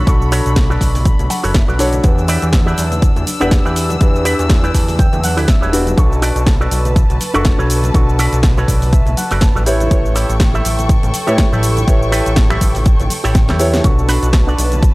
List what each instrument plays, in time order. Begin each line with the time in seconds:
Already playing: string section D4 A4 B5
0.06 analog synth bass B1, grand piano D4 F#4 A4 C#6, kick, closed hi-hat, cabasa
0.22 cabasa
0.31 clean electric guitar F#4 A4 B4 C#5, open hi-hat, cabasa, shaker
0.46 analog synth bass B1, closed hi-hat, cabasa, shaker
0.56 kick, snare, closed hi-hat, cabasa, shaker
0.70 clean electric guitar F#4 A4 B4 D5, muted conga, cabasa
0.81 analog synth bass B1, kick, open hi-hat, high conga, cabasa, shaker
0.95 open hi-hat, low conga, cabasa, shaker
1.05 kick, closed hi-hat, cabasa, shaker
1.19 analog synth bass B1, closed hi-hat, low conga, cabasa
1.30 clean electric guitar F#5, open hi-hat, muted conga, high conga, cabasa, shaker
1.43 analog synth bass F#1, clean electric guitar F#4 A4 B4 C#5, open hi-hat, cabasa, shaker
1.54 clean electric guitar E5, kick, snare, closed hi-hat, cabasa, shaker
1.68 analog synth bass B1, clean electric guitar F#4 A4 B4 D5, muted conga, high conga, cabasa
1.79 grand piano D4 F#4 A4 C#5, clean electric guitar D5, open hi-hat, cabasa, shaker
1.93 closed hi-hat, high conga, low conga, cabasa, shaker
2.03 analog synth bass E2, grand piano D4 G4 B4 F#5, string section E6, kick, closed hi-hat, cabasa, shaker
2.18 cabasa
2.28 clean electric guitar E4 G4 B4 D5, open hi-hat, cabasa, shaker
2.42 analog synth bass E2, closed hi-hat, cabasa, shaker
2.52 kick, snare, closed hi-hat, cabasa, shaker
2.66 clean electric guitar E4 G4 B4 D5, cabasa
2.77 analog synth bass E2, open hi-hat, high conga, cabasa, shaker
2.92 closed hi-hat, low conga, cabasa, shaker
3.02 kick, closed hi-hat, cabasa
3.16 analog synth bass E2, closed hi-hat, low conga, cabasa
3.27 open hi-hat, high conga, cabasa, shaker
3.39 analog synth bass E1, grand piano D4 G4 B4 F#5, clean electric guitar E4 G4 B4 D5, closed hi-hat, muted conga, cabasa, shaker
3.51 kick, snare, closed hi-hat, cabasa
3.65 analog synth bass E2, clean electric guitar E4 G4 B4 D5, muted conga, high conga, cabasa
3.76 open hi-hat, cabasa, shaker
3.89 closed hi-hat, high conga, low conga, cabasa, shaker
4.00 analog synth bass E2, grand piano D4 G4 B4, kick, closed hi-hat, cabasa, shaker
4.15 cabasa
4.25 clean electric guitar E4 G4 B4 D5, open hi-hat, cabasa, shaker
4.39 analog synth bass E2, closed hi-hat, cabasa, shaker
4.50 kick, snare, closed hi-hat, cabasa
4.63 clean electric guitar E4 G4 B4 D5, closed hi-hat, muted conga, cabasa
4.74 analog synth bass E2, clean electric guitar A5, kick, open hi-hat, high conga, cabasa, shaker
4.88 open hi-hat, low conga, cabasa, shaker
4.99 clean electric guitar G5, kick, closed hi-hat, cabasa, shaker
5.13 analog synth bass E2, closed hi-hat, low conga, cabasa
5.23 clean electric guitar F#5, open hi-hat, muted conga, high conga, cabasa, shaker
5.37 analog synth bass D2, clean electric guitar E4 G4 B4 D5, open hi-hat, cabasa, shaker
5.48 clean electric guitar E5, kick, snare, closed hi-hat, cabasa, shaker
5.61 analog synth bass E1, clean electric guitar E4 G4 B4 C#5, muted conga, high conga, cabasa
5.73 grand piano D4 F#4 G4 B4, clean electric guitar D5, open hi-hat, cabasa, shaker
5.87 closed hi-hat, muted conga, high conga, low conga, cabasa, shaker
5.97 analog synth bass B1, grand piano D4 F#4 A4 C#6, string section B4 A5, kick, closed hi-hat, cabasa, shaker
6.12 cabasa
6.22 clean electric guitar F#4 A4 B4 D5, open hi-hat, cabasa, shaker
6.36 analog synth bass B1, closed hi-hat, cabasa, shaker
6.46 kick, snare, closed hi-hat, cabasa, shaker
6.61 clean electric guitar F#4 A4 B4 D5, cabasa
6.71 analog synth bass B1, open hi-hat, high conga, cabasa, shaker
6.85 closed hi-hat, low conga, cabasa, shaker
6.96 kick, closed hi-hat, cabasa, shaker
7.10 analog synth bass B1, closed hi-hat, low conga, cabasa
7.20 open hi-hat, high conga, cabasa, shaker
7.34 analog synth bass F#1, grand piano D4 F#4 A4 C#6, clean electric guitar F#4 A4 B4 D5, closed hi-hat, muted conga, cabasa, shaker
7.45 kick, snare, closed hi-hat, cabasa, shaker
7.59 analog synth bass B1, clean electric guitar F#4 A4 B4 C#5, muted conga, high conga, cabasa
7.70 open hi-hat, cabasa, shaker
7.83 closed hi-hat, high conga, low conga, cabasa, shaker
7.94 analog synth bass B1, grand piano D4 F#4 A4 C#6, kick, closed hi-hat, cabasa, shaker
8.09 cabasa
8.19 clean electric guitar F#4 A4 B4 D5, open hi-hat, cabasa, shaker
8.32 analog synth bass B1, closed hi-hat, cabasa, shaker
8.43 kick, snare, closed hi-hat, cabasa, shaker
8.57 clean electric guitar F#4 A4 B4 C#5, muted conga, cabasa
8.68 analog synth bass B1, clean electric guitar D5, kick, open hi-hat, high conga, cabasa, shaker
8.81 open hi-hat, low conga, cabasa, shaker
8.93 clean electric guitar E5, kick, closed hi-hat, cabasa, shaker
9.06 analog synth bass B1, closed hi-hat, low conga, cabasa
9.17 clean electric guitar F#5, open hi-hat, muted conga, high conga, cabasa, shaker
9.31 analog synth bass F#1, clean electric guitar F#4 A4 B4 D5, open hi-hat, cabasa, shaker
9.41 clean electric guitar A5, kick, snare, closed hi-hat, cabasa, shaker
9.55 analog synth bass A1, clean electric guitar F#4 A4 B4 D5, muted conga, high conga, cabasa
9.66 clean electric guitar E4 G4 A4 C#5 B5, grand piano E4 G4 B4 C#5, string section A4 G5 C#6, open hi-hat, cabasa, shaker
9.80 closed hi-hat, high conga, low conga, cabasa, shaker
9.90 analog synth bass A1, grand piano E4 G4 B4 C#5, kick, closed hi-hat, cabasa, shaker
10.05 cabasa
10.15 clean electric guitar E4 G4 A4 C#5, open hi-hat, cabasa, shaker
10.29 analog synth bass A1, closed hi-hat, cabasa, shaker
10.40 kick, snare, closed hi-hat, cabasa, shaker
10.54 clean electric guitar E4 G4 A4 E5, cabasa
10.65 analog synth bass A1, open hi-hat, high conga, cabasa, shaker
10.79 closed hi-hat, low conga, cabasa, shaker
10.89 kick, closed hi-hat, cabasa
11.03 analog synth bass A1, closed hi-hat, low conga, cabasa
11.14 open hi-hat, high conga, cabasa, shaker
11.27 analog synth bass A2, grand piano E4 G4 B4 C#5, clean electric guitar E4 G4 A4 C#5, closed hi-hat, muted conga, cabasa, shaker
11.38 kick, snare, closed hi-hat, cabasa, shaker
11.52 analog synth bass A1, clean electric guitar E4 G4 A4 B4, muted conga, high conga, cabasa
11.63 open hi-hat, cabasa, shaker
11.77 closed hi-hat, high conga, low conga, cabasa, shaker
11.87 analog synth bass A1, grand piano E4 G4 B4 C#5, kick, closed hi-hat, cabasa, shaker
12.02 cabasa
12.12 clean electric guitar E4 G4 A4 B4, open hi-hat, cabasa, shaker
12.26 analog synth bass A1, closed hi-hat, cabasa, shaker
12.36 kick, snare, closed hi-hat, cabasa
12.50 clean electric guitar E4 G4 A4 E5, finger snap, muted conga, cabasa
12.60 analog synth bass A1, kick, open hi-hat, high conga, cabasa, shaker
12.75 open hi-hat, low conga, cabasa, shaker
12.86 kick, closed hi-hat, cabasa, shaker
13.00 analog synth bass A1, closed hi-hat, low conga, cabasa
13.10 open hi-hat, muted conga, high conga, cabasa, shaker
13.24 analog synth bass A1, clean electric guitar E4 G4 A4 C#5, open hi-hat, cabasa, shaker
13.35 kick, snare, closed hi-hat, cabasa, shaker
13.48 analog synth bass E2, clean electric guitar E4 G4 A4 C#5, snare, closed hi-hat, muted conga, high conga, cabasa
13.59 grand piano E4 G4 B4 C#5, open hi-hat, cabasa, shaker
13.74 snare, closed hi-hat, muted conga, high conga, low conga, cabasa, shaker
13.83 analog synth bass B1, grand piano D4 F#4 A4 C#6, string section B4 A5, kick, closed hi-hat, cabasa, shaker
13.99 cabasa
14.08 clean electric guitar D4 F#4 A4 B4, open hi-hat, cabasa, shaker
14.22 analog synth bass B1, closed hi-hat, cabasa, shaker
14.33 kick, snare, closed hi-hat, cabasa, shaker
14.47 clean electric guitar D4 F#4 A4 D5, cabasa
14.58 analog synth bass B1, open hi-hat, high conga, cabasa, shaker
14.72 closed hi-hat, low conga, cabasa, shaker
14.83 kick, closed hi-hat, cabasa